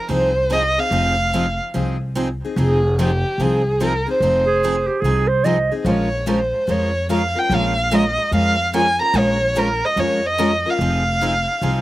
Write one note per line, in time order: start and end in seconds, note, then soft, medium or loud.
0.09 0.75 C2 medium
0.09 0.32 F3 medium
0.09 0.32 C4 medium
0.09 0.32 D#4 medium
0.09 0.32 G#4 medium
0.09 0.54 C5 medium
0.52 0.63 F3 medium
0.52 0.63 C4 medium
0.52 0.63 D#4 medium
0.52 0.64 G#4 medium
0.52 0.81 D#5 medium
0.78 0.92 C4 soft
0.78 0.92 D#4 soft
0.78 0.92 G#4 soft
0.78 1.61 F5 medium
0.91 1.57 F1 medium
0.91 1.14 F3 medium
0.91 1.14 C4 medium
0.91 1.14 D#4 medium
0.91 1.15 G#4 medium
1.34 1.45 F3 medium
1.34 1.45 C4 medium
1.34 1.46 D#4 medium
1.34 1.46 G#4 medium
1.74 2.40 C2 medium
1.74 1.96 F3 medium
1.74 1.97 C4 medium
1.74 1.97 D#4 medium
1.74 1.97 G#4 medium
2.16 2.27 F3 medium
2.16 2.28 C4 medium
2.16 2.28 D#4 medium
2.16 2.28 G#4 medium
2.45 2.58 C4 soft
2.45 2.58 D#4 medium
2.45 2.57 G#4 medium
2.56 3.22 F1 medium
2.56 2.79 F3 medium
2.56 2.80 C4 medium
2.56 2.79 D#4 medium
2.56 2.80 G#4 medium
2.62 2.98 G#4 medium
2.99 3.10 F3 medium
2.99 3.10 C4 medium
2.99 3.10 D#4 medium
2.99 3.44 G4 medium
2.99 3.10 G#4 medium
3.38 4.04 C2 medium
3.38 3.61 F3 medium
3.38 3.61 C4 medium
3.38 3.62 D#4 medium
3.38 3.62 G#4 medium
3.42 3.84 G#4 medium
3.80 3.92 F3 medium
3.80 3.92 C4 medium
3.80 3.92 D#4 medium
3.80 3.92 G#4 medium
3.80 4.08 A#4 medium
4.07 4.21 C4 soft
4.07 4.21 D#4 soft
4.07 4.21 G#4 medium
4.07 4.87 C5 medium
4.20 4.86 F1 medium
4.20 4.44 F3 medium
4.20 4.43 C4 medium
4.20 4.44 D#4 medium
4.20 4.44 G#4 medium
4.47 4.89 G#4 medium
4.63 4.74 F3 medium
4.63 4.75 C4 medium
4.63 4.75 D#4 medium
4.63 4.75 G#4 medium
4.87 5.03 G4 medium
5.01 5.68 C2 medium
5.01 5.26 F3 medium
5.01 5.26 C4 medium
5.01 5.26 D#4 medium
5.01 5.30 G#4 medium
5.01 5.26 G#4 medium
5.28 5.46 C5 medium
5.44 5.56 F3 medium
5.44 5.56 C4 medium
5.44 5.56 D#4 medium
5.44 5.56 G#4 medium
5.44 5.73 D#5 medium
5.71 5.86 C4 soft
5.71 5.86 D#4 medium
5.71 5.85 G#4 medium
5.83 6.51 A#1 medium
5.83 6.07 F3 soft
5.83 6.08 G#3 medium
5.83 6.08 C#4 medium
5.83 6.08 F4 medium
5.83 6.08 A#4 medium
5.83 5.92 C5 medium
5.90 6.29 C#5 medium
6.26 6.38 F3 medium
6.26 6.38 G#3 medium
6.26 6.38 C#4 medium
6.26 6.38 F4 medium
6.26 6.38 A#4 medium
6.31 6.72 C5 medium
6.67 7.34 F2 medium
6.67 6.89 F3 medium
6.67 6.89 G#3 medium
6.67 6.90 C#4 medium
6.67 6.90 F4 medium
6.67 6.90 A#4 medium
6.71 7.11 C#5 medium
7.09 7.21 F3 medium
7.09 7.21 G#3 medium
7.09 7.21 C#4 medium
7.09 7.21 F4 medium
7.09 7.21 A#4 medium
7.09 7.40 F5 medium
7.35 7.49 C#4 soft
7.35 7.50 F4 soft
7.35 7.50 A#4 soft
7.35 7.55 G5 medium
7.50 8.16 A#1 medium
7.50 7.72 F3 medium
7.50 7.72 G#3 medium
7.50 7.72 C#4 medium
7.50 7.73 F4 medium
7.50 7.73 A#4 medium
7.50 7.96 F5 medium
7.91 8.03 F3 medium
7.91 8.03 G#3 medium
7.91 8.03 C#4 medium
7.91 8.03 F4 medium
7.91 8.03 A#4 medium
7.91 8.34 D#5 medium
8.32 8.98 F2 medium
8.32 8.54 F3 medium
8.32 8.54 G#3 medium
8.32 8.54 C#4 medium
8.32 8.54 F4 medium
8.32 8.55 A#4 medium
8.32 8.72 F5 medium
8.73 8.85 F3 medium
8.73 8.85 G#3 medium
8.73 8.86 C#4 medium
8.73 8.86 F4 medium
8.73 8.86 A#4 medium
8.73 9.00 G#5 medium
9.00 9.13 C#4 soft
9.00 9.14 F4 soft
9.00 9.14 A#4 medium
9.00 9.19 A#5 medium
9.14 9.80 A#1 medium
9.14 9.37 F3 medium
9.14 9.37 G#3 medium
9.14 9.37 C#4 medium
9.14 9.37 F4 medium
9.14 9.37 A#4 medium
9.18 9.60 C#5 medium
9.55 9.67 F3 medium
9.55 9.67 G#3 medium
9.55 9.68 C#4 medium
9.55 9.68 F4 medium
9.55 9.68 A#4 medium
9.55 9.87 A#4 medium
9.85 10.01 D#5 medium
9.96 10.63 F2 medium
9.96 10.20 F3 medium
9.96 10.20 G#3 medium
9.96 10.20 C#4 medium
9.96 10.20 F4 medium
9.96 10.20 A#4 medium
9.96 10.28 C#5 medium
10.26 10.71 D#5 medium
10.39 10.50 F3 medium
10.39 10.51 G#3 medium
10.39 10.50 C#4 medium
10.39 10.51 F4 medium
10.39 10.51 A#4 medium
10.66 10.80 C#4 soft
10.66 10.80 F4 soft
10.66 10.80 A#4 medium
10.66 11.81 F5 medium
10.79 11.45 F1 medium
10.79 11.02 F3 medium
10.79 11.02 C4 medium
10.79 11.02 D#4 medium
10.79 11.02 G#4 medium
11.21 11.33 F3 medium
11.21 11.33 C4 medium
11.21 11.33 D#4 medium
11.21 11.33 G#4 medium
11.62 11.81 C2 medium
11.62 11.81 F3 medium
11.62 11.81 C4 medium
11.62 11.81 D#4 medium
11.62 11.81 G#4 medium